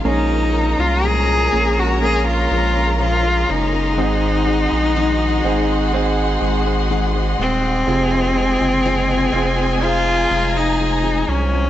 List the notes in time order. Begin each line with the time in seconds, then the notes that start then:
0.04 A#1 A#2 F3 G#3 A#3 C#4 D#4 F4 G#4 A#4 C#5 A#5
0.53 F3 G#3 C#4 F4
0.78 C2 G#3 C#4 F4
1.03 A#2 F3 G#3 C#4 F4 G#4
1.52 A#1 F3 G#3 A#3 C#4 F4 G#4
1.76 G#3 C#4 F4 F#4
2.02 A#3 C#4 G#4 A#4 C6
2.27 F4
2.50 A#1 F3 G#3 C#4 F4
2.74 G#3 C#4 F4
2.99 A#2 F3 G#3 C#4 F4
3.23 G#3 C#4 F4
3.47 F#1 F3 G#3 C#4 D#4 F4
3.72 G#3 C#4 F4
3.97 G#1 G#2 D#3 G#3 C4 D#4 F#4 G#4 D#5 F#5
4.45 G#3 C4 D#4 G#4
4.70 A#1 G#3 C4 D#4 G#4
4.95 G#2 D#3 G#3 C4 D#4 G#4
5.44 G#1 G#3 C4 D#4 G#4
5.68 G#3 C4 D#4 G#4
5.93 C4 D#4 G#4 D#5
6.41 G#1 G#3 C4 D#4 G#4
6.65 G#3 C4 D#4 G#4
6.90 G#2 D#3 G#3 C4 D#4 G#4
7.14 G#3 C4 D#4 G#4
7.38 D#1 G#3 C4 D#4 G#4
7.87 F1 F2 C3 F3 G#3 C4 F4 G#4 G#5
8.36 F3 G#3 C4 F4
8.60 F#1 F3 G#3 C4 F4
8.84 F2 C3 F3 G#3 C4 F4
9.33 F1 F3 G#3 C4 F4 G#4
9.57 F3 G#3 C4 F4
9.81 F4 G#4 C5 A#5
10.29 F1 F3 G#3 C4 F4
10.54 F3 G#3 C4 D#4 F4
10.78 F2 C3 F3 G#3 C4 F4
11.03 F3 G#3 C4 F4
11.27 C2 F3 G#3 C4 C#4 F4
11.52 F3 G#3 C4 F4